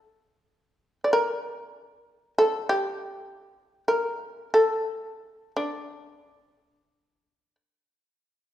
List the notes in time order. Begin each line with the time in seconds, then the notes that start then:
Already playing: A4
1.04 D5
1.13 A#4
2.38 A4
2.69 G4
3.88 A#4
4.54 A4
5.57 D4